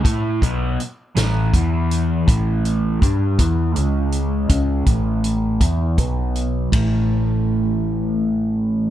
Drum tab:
RD |------|------|------|x-----|
HH |xxxxxx|xxxxxx|xxxxxx|------|
SD |---o--|------|------|------|
BD |oo--o-|o-oo--|oo-oo-|o-----|